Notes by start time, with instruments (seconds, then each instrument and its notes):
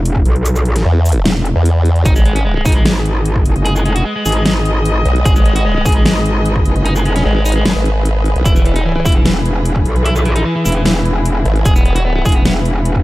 Already playing: wobble bass E1
0.05 closed hi-hat
0.16 kick
0.25 wobble bass B1, closed hi-hat
0.36 closed hi-hat
0.45 closed hi-hat, shaker
0.56 shaker
0.65 wobble bass A#1, closed hi-hat
0.76 snare, closed hi-hat
0.85 wobble bass E2
1.05 closed hi-hat, shaker
1.09 closed hi-hat
1.12 closed hi-hat
1.25 wobble bass E1, snare, closed hi-hat
1.45 closed hi-hat
1.56 wobble bass E2
1.65 closed hi-hat
1.85 closed hi-hat
1.96 closed hi-hat
2.05 wobble bass G#1, string section G#3 G#4 B4 D#5, clean electric guitar D#4, kick, closed hi-hat, shaker
2.16 clean electric guitar G#3, shaker
2.26 clean electric guitar G#3, closed hi-hat
2.36 clean electric guitar C#4, closed hi-hat
2.45 clean electric guitar G#3
2.56 clean electric guitar G#3
2.65 wobble bass G#1, clean electric guitar D#4, kick, closed hi-hat, shaker
2.69 closed hi-hat
2.72 clean electric guitar G#3, closed hi-hat
2.85 clean electric guitar G#3, snare, closed hi-hat
3.06 closed hi-hat
3.26 closed hi-hat
3.36 kick
3.46 wobble bass F#1, closed hi-hat
3.56 closed hi-hat
3.65 clean electric guitar G#4, closed hi-hat
3.76 clean electric guitar G#3, shaker
3.86 wobble bass F1, clean electric guitar G#3, closed hi-hat
3.96 clean electric guitar F#4, closed hi-hat
4.05 clean electric guitar G#3
4.16 clean electric guitar G#3
4.25 wobble bass G#1, clean electric guitar G#4, closed hi-hat, shaker
4.29 closed hi-hat
4.32 clean electric guitar G#3, closed hi-hat
4.46 snare, closed hi-hat
4.66 closed hi-hat
4.85 closed hi-hat
5.05 wobble bass B1, closed hi-hat
5.16 closed hi-hat
5.25 wobble bass G#1, clean electric guitar G#4, kick, closed hi-hat, shaker
5.36 clean electric guitar G#3, shaker
5.46 clean electric guitar G#3, closed hi-hat
5.56 clean electric guitar F#4, closed hi-hat
5.66 clean electric guitar G#3
5.76 clean electric guitar G#3
5.86 wobble bass G#1, clean electric guitar G#4, kick, closed hi-hat, shaker
5.89 closed hi-hat
5.92 clean electric guitar G#3, closed hi-hat
6.06 clean electric guitar G#3, snare, closed hi-hat
6.26 closed hi-hat
6.46 closed hi-hat
6.56 kick
6.65 wobble bass F#1, closed hi-hat
6.76 closed hi-hat
6.86 clean electric guitar D#4, closed hi-hat
6.96 clean electric guitar G#3, shaker
7.06 wobble bass F1, clean electric guitar G#3, closed hi-hat
7.16 clean electric guitar C#4, snare, closed hi-hat
7.26 wobble bass G#1, clean electric guitar G#3
7.36 clean electric guitar G#3
7.45 clean electric guitar D#4, closed hi-hat, shaker
7.49 closed hi-hat
7.52 clean electric guitar G#3, closed hi-hat
7.66 wobble bass F#1, clean electric guitar G#3, snare, closed hi-hat
7.76 wobble bass G#1
7.86 closed hi-hat
8.05 closed hi-hat
8.26 closed hi-hat
8.36 wobble bass B1, closed hi-hat
8.45 wobble bass E1, string section E3 E4, clean electric guitar E4, kick, closed hi-hat, shaker
8.56 clean electric guitar E3, shaker
8.65 clean electric guitar E3, closed hi-hat
8.76 clean electric guitar D#4, closed hi-hat
8.86 clean electric guitar E3
8.96 clean electric guitar E3
9.05 wobble bass E1, clean electric guitar E4, kick, closed hi-hat, shaker
9.09 closed hi-hat
9.12 clean electric guitar E3, closed hi-hat
9.26 clean electric guitar E3, snare, closed hi-hat
9.46 closed hi-hat
9.65 closed hi-hat
9.76 kick
9.86 wobble bass B1, closed hi-hat
9.96 closed hi-hat
10.05 clean electric guitar E4, closed hi-hat
10.16 clean electric guitar E3, shaker
10.25 wobble bass A#1, clean electric guitar E3, closed hi-hat
10.36 clean electric guitar D#4, closed hi-hat
10.46 clean electric guitar E3
10.56 clean electric guitar E3
10.65 wobble bass E1, clean electric guitar E4, closed hi-hat, shaker
10.69 closed hi-hat
10.72 clean electric guitar E3, closed hi-hat
10.85 clean electric guitar E3, snare, closed hi-hat
11.05 closed hi-hat
11.25 closed hi-hat
11.45 wobble bass G#1, closed hi-hat
11.56 closed hi-hat
11.65 wobble bass E1, clean electric guitar G#4, kick, closed hi-hat, shaker
11.76 clean electric guitar B3, shaker
11.85 clean electric guitar B3, closed hi-hat
11.96 clean electric guitar F#4, closed hi-hat
12.05 clean electric guitar B3
12.16 clean electric guitar B3
12.25 wobble bass E1, clean electric guitar G#4, kick, closed hi-hat, shaker
12.29 closed hi-hat
12.32 clean electric guitar B3, closed hi-hat
12.45 clean electric guitar B3, snare, closed hi-hat
12.65 closed hi-hat
12.85 closed hi-hat
12.96 kick